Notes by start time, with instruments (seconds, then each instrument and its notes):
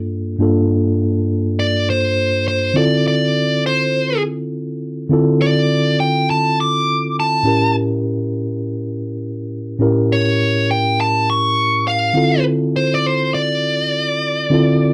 Already playing: tine electric piano G2 A#3 D4 F4 A4
0.39 tine electric piano G2 A#3 D4 F4 A4
1.59 lead electric guitar D5
1.90 lead electric guitar C5
2.48 lead electric guitar C5
2.74 tine electric piano D3 C4 E4 F4 A4, lead electric guitar D5
3.08 lead electric guitar D5
3.66 lead electric guitar C5
5.09 tine electric piano D3 C4 E4 F4 A4
5.42 lead electric guitar D5
6.00 lead electric guitar G5
6.30 lead electric guitar A5
6.60 lead electric guitar D6
7.20 lead electric guitar A5
7.43 tine electric piano A2 C#4 E4 G4
7.47 tine electric piano A#4
9.79 tine electric piano A2 C#4 E4 G4 A#4
10.12 lead electric guitar C#5
10.71 lead electric guitar G5
11.01 lead electric guitar A5
11.30 lead electric guitar C#6
11.88 lead electric guitar F5
12.14 tine electric piano D3 C4 E4 F4 A4
12.76 lead electric guitar C5
12.94 lead electric guitar D5
13.06 lead electric guitar C5
13.34 lead electric guitar D5
14.50 tine electric piano D3 C4 E4 F4 A4